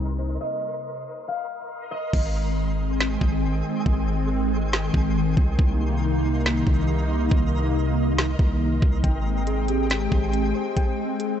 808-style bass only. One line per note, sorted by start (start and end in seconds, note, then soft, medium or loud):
0.00 0.38 C2 loud
2.13 3.17 G#1 loud
3.21 3.63 G#1 loud
3.86 4.90 G#1 loud
4.94 5.35 G#1 loud
5.37 5.58 C2 loud
5.59 6.63 C2 loud
6.67 7.29 C2 loud
7.31 8.35 C2 loud
8.39 8.81 C2 loud
8.82 9.03 C2 loud
9.04 10.08 G#1 loud
10.12 10.53 G#1 loud